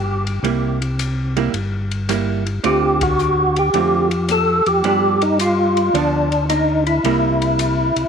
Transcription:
Already playing: tonewheel organ G1
0.27 ride
0.43 tonewheel organ C2, hollow-body jazz guitar G3 A#3 E4, ride
0.82 ride
0.99 hi-hat pedal, ride
1.37 hollow-body jazz guitar G3 A#3 E4, ride
1.53 tonewheel organ G1, ride
1.91 ride
2.09 hollow-body jazz guitar G3 A#3 E4, cross-stick, hi-hat pedal, ride
2.46 ride
2.64 tonewheel organ D2 G4, hollow-body jazz guitar D3 A3 C4 F4, ride
3.01 tonewheel organ F#4, kick, ride
3.19 hi-hat pedal
3.56 tonewheel organ G4, ride
3.73 tonewheel organ F2, hollow-body jazz guitar D3 A3 C4 F4, ride
4.11 ride
4.29 tonewheel organ A4, cross-stick, hi-hat pedal, ride
4.66 tonewheel organ F2 G4, ride
4.84 tonewheel organ G2, hollow-body jazz guitar F3 B3 D4, ride
5.22 tonewheel organ D#4, ride
5.39 tonewheel organ F4, hi-hat pedal, ride
5.77 ride
5.94 tonewheel organ D2 D4, hollow-body jazz guitar F3 B3 D4, ride
6.32 ride
6.49 tonewheel organ D#4, cross-stick, hi-hat pedal, ride
6.87 tonewheel organ E4, ride
7.04 tonewheel organ C2, hollow-body jazz guitar G3 A#3 E4, ride
7.42 ride
7.59 hi-hat pedal, ride
7.96 tonewheel organ C2, ride

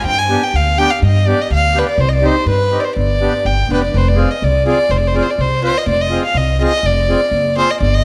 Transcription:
0.04 upright bass G2, violin G5
0.19 violin G#5
0.29 accordion B3 D4 G4
0.43 violin G5
0.53 upright bass D2, violin F5
0.78 accordion B3 D4 G4, violin G5
0.90 violin F5
1.02 upright bass G2, violin D#5
1.27 accordion B3 D4 G4, violin D5
1.41 violin D#5
1.50 upright bass D2, violin F5
1.75 accordion B3 D4 G4, violin B4
1.89 violin D5
1.98 upright bass C2, violin C5
2.09 violin D#5
2.13 violin D5
2.23 accordion C4 D#4 G4, violin C5
2.46 upright bass G2
2.50 violin B4
2.71 accordion C4 D#4 G4
2.80 violin D5
2.84 violin C5
2.96 upright bass G1, violin D5
3.21 accordion B3 D4 G4
3.45 upright bass G1, violin G5
3.69 upright bass F1, accordion B3 D4 G4, violin B4
3.84 violin D5
3.94 upright bass F1, violin B4 C5
4.01 violin C5
4.09 violin D5
4.16 accordion C4 F4 G#4
4.31 violin D#5
4.42 upright bass C2, violin D5
4.66 accordion C4 F4 G#4, violin D5
4.89 upright bass F1, violin C5
4.97 violin D5
5.07 violin C5
5.15 accordion C4 F4 G#4, violin D5
5.23 violin C5
5.30 violin D5
5.38 upright bass C2, violin C5
5.63 accordion C4 F4 B4, violin C5
5.78 violin D#5
5.86 upright bass F1, violin D5
6.01 violin D#5
6.10 accordion C4 F4 G#4
6.25 violin F5
6.34 upright bass C2, violin D#5
6.61 accordion C4 F4 G#4, violin D#5
6.83 upright bass F1, violin D5
7.08 accordion C4 F4 G#4
7.31 upright bass F#1
7.56 accordion C4 F4 G#4, violin C5
7.71 violin D#5
7.80 upright bass G1, violin D5
7.95 violin D#5

